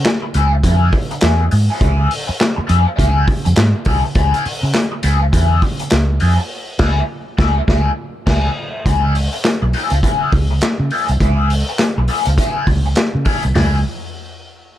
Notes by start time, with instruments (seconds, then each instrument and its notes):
0.06 muted overdriven electric guitar stroke, snare, clap, closed hi-hat
0.22 muted overdriven electric guitar stroke
0.34 fingered electric bass C#2, overdriven electric guitar F3 B3 E4 G#4, closed hi-hat
0.53 muted overdriven electric guitar stroke
0.63 fingered electric bass F2, overdriven electric guitar F3 B3 E4 G#4, kick, closed hi-hat
0.93 muted overdriven electric guitar stroke, kick, open hi-hat
1.11 muted overdriven electric guitar stroke, closed hi-hat
1.21 fingered electric bass E2, overdriven electric guitar F3 B3 E4 G#4, snare, clap, closed hi-hat
1.51 fingered electric bass G#2, muted overdriven electric guitar stroke, open hi-hat
1.70 overdriven electric guitar F3 B3 E4 G#4
1.81 fingered electric bass C#2, overdriven electric guitar F3 B3 E4 G#4, kick, closed hi-hat
2.11 open hi-hat
2.27 muted overdriven electric guitar stroke, muted fingered electric bass stroke
2.40 muted overdriven electric guitar stroke, snare, clap, closed hi-hat
2.56 muted overdriven electric guitar stroke, muted fingered electric bass stroke
2.67 fingered electric bass F2, overdriven electric guitar F3 B3 E4 G#4, closed hi-hat
2.86 muted overdriven electric guitar stroke
2.96 fingered electric bass C#2, overdriven electric guitar F3 B3 E4 G#4, kick, closed hi-hat
3.27 muted overdriven electric guitar stroke, kick, open hi-hat
3.45 fingered electric bass F2, muted overdriven electric guitar stroke, closed hi-hat
3.56 fingered electric bass G#2, muted overdriven electric guitar stroke, snare, clap, closed hi-hat
3.85 fingered electric bass C2, overdriven electric guitar F3 B3 E4 G#4, kick, open hi-hat
4.03 muted overdriven electric guitar stroke
4.15 fingered electric bass C#2, overdriven electric guitar F3 B3 E4 G#4, kick, closed hi-hat
4.34 closed hi-hat
4.45 muted fingered electric bass stroke, open hi-hat
4.63 fingered electric bass C#3, muted overdriven electric guitar stroke
4.74 muted overdriven electric guitar stroke, snare, clap, closed hi-hat
4.92 muted overdriven electric guitar stroke
5.03 fingered electric bass C#2, overdriven electric guitar F3 B3 E4 G#4, closed hi-hat
5.21 muted overdriven electric guitar stroke
5.32 fingered electric bass E2, overdriven electric guitar F3 B3 E4 G#4, kick, closed hi-hat
5.62 muted overdriven electric guitar stroke, kick, open hi-hat
5.79 muted overdriven electric guitar stroke, closed hi-hat
5.90 fingered electric bass C#2, muted overdriven electric guitar stroke, snare, clap, closed hi-hat
6.20 fingered electric bass F2, overdriven electric guitar F3 B3 E4 G#4, open hi-hat
6.38 muted overdriven electric guitar stroke
6.79 fingered electric bass C#2, overdriven electric guitar F3 B3 E4 G#4, kick, snare, crash
7.38 fingered electric bass C#2, overdriven electric guitar F3 B3 E4 G#4, kick, snare
7.68 fingered electric bass C#2, overdriven electric guitar F3 B3 E4 G#4, kick, snare
8.26 fingered electric bass C#2, overdriven electric guitar F3 B3 E4 G#4, kick, snare, crash
8.86 fingered electric bass C#2, overdriven electric guitar F3 B3 E4 G#4, kick, closed hi-hat
9.15 open hi-hat
9.33 muted overdriven electric guitar stroke
9.45 muted overdriven electric guitar stroke, snare, clap, closed hi-hat
9.62 fingered electric bass B1, muted overdriven electric guitar stroke
9.73 overdriven electric guitar F3 B3 E4 G#4, open hi-hat
9.90 fingered electric bass C#2, muted overdriven electric guitar stroke, closed hi-hat
10.03 overdriven electric guitar F3 B3 E4 G#4, kick, closed hi-hat
10.32 fingered electric bass C#2, muted overdriven electric guitar stroke, kick, open hi-hat
10.51 muted overdriven electric guitar stroke
10.61 muted overdriven electric guitar stroke, snare, clap, closed hi-hat
10.80 fingered electric bass C#3
10.91 overdriven electric guitar F3 B3 E4 G#4, open hi-hat
11.08 fingered electric bass C2, muted overdriven electric guitar stroke, closed hi-hat
11.20 fingered electric bass C#2, overdriven electric guitar F3 B3 E4 G#4, kick, closed hi-hat
11.50 open hi-hat
11.69 muted overdriven electric guitar stroke
11.79 muted overdriven electric guitar stroke, snare, clap, closed hi-hat
11.98 fingered electric bass B1, muted overdriven electric guitar stroke
12.08 overdriven electric guitar F3 B3 E4 G#4, open hi-hat
12.25 fingered electric bass C#2, muted overdriven electric guitar stroke, closed hi-hat
12.38 overdriven electric guitar F3 B3 E4 G#4, kick, closed hi-hat
12.67 fingered electric bass C#2, muted overdriven electric guitar stroke, kick, open hi-hat
12.86 muted overdriven electric guitar stroke
12.95 muted overdriven electric guitar stroke, snare, clap, closed hi-hat
13.15 fingered electric bass C#3
13.25 overdriven electric guitar F3 B3 E4 G#4, kick, open hi-hat
13.43 fingered electric bass C2, muted overdriven electric guitar stroke, closed hi-hat
13.55 fingered electric bass C#2, overdriven electric guitar F3 B3 E4 G#4, snare, floor tom, open hi-hat